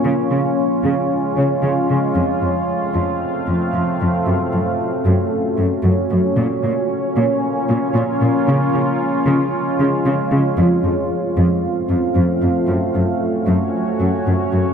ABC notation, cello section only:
X:1
M:4/4
L:1/8
Q:1/4=114
K:Db
V:1 name="Cello section" clef=bass
D, D, z D, z D, D, D, | F,, F,, z F,, z F,, F,, F,, | G,, G,, z G,, z G,, G,, G,, | B,, B,, z B,, z B,, B,, B,, |
D, D, z D, z D, D, D, | F,, F,, z F,, z F,, F,, F,, | G,, G,, z G,, z G,, G,, G,, |]